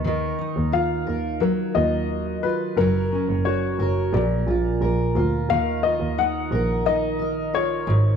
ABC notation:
X:1
M:4/4
L:1/16
Q:1/4=88
K:Ebm
V:1 name="Upright piano"
z4 f4 B2 e4 c2 | B4 d4 =d6 z2 | f2 e2 g4 e4 d4 |]
V:2 name="Steel-string acoustic guitar"
[E,B]2 E2 F2 B2 G,2 F4 F2 | [G,B]2 D2 G2 B2 B,,2 F2 B2 F2 | E,2 F2 E2 B2 E2 B2 F2 A,,2 |]
V:3 name="Double bass" clef=bass
E,,2 z E,,3 E,,3 z E,,4 z2 | G,,,2 z G,,,3 G,,,2 B,,,2 B,,,2 B,,,2 =D,,2 | E,,3 E,,3 B,,,8 A,,,2 |]